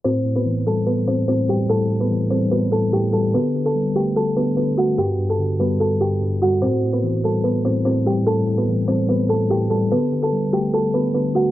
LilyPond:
<<
  \new Staff \with { instrumentName = "Kalimba" } { \time 4/4 \key a \dorian \tempo 4 = 146 <c' c''>8. <b b'>8. <a' a''>8 <b b'>8 <c' c''>8 <c' c''>8 <g' g''>8 | <a' a''>8. <b b'>8. <c' c''>8 <b b'>8 <a' a''>8 <g' g''>8 <a' a''>8 | <b b'>8. <a' a''>8. <g' g''>8 <a' a''>8 <b b'>8 <b b'>8 <fis' fis''>8 | <g' g''>8. <a' a''>8. <b b'>8 <a' a''>8 <g' g''>4 <fis' fis''>8 |
<c' c''>8. <b b'>8. <a' a''>8 <b b'>8 <c' c''>8 <c' c''>8 <g' g''>8 | <a' a''>8. <b b'>8. <c' c''>8 <b b'>8 <a' a''>8 <g' g''>8 <a' a''>8 | <b b'>8. <a' a''>8. <g' g''>8 <a' a''>8 <b b'>8 <b b'>8 <fis' fis''>8 | }
  \new Staff \with { instrumentName = "Tine electric piano" } { \clef bass \time 4/4 \key a \dorian a,8 a,8 e8 g4 a,8 a,8 g8 | a,8 a,8 e8 g4 a,8 a,8 g8 | d8 d8 g8 a4 d8 d8 a8 | g,8 g,8 d8 g4 g,8 g,8 g8 |
a,8 a,8 e8 g4 a,8 a,8 g8 | a,8 a,8 e8 g4 a,8 a,8 g8 | d8 d8 g8 a4 d8 d8 a8 | }
>>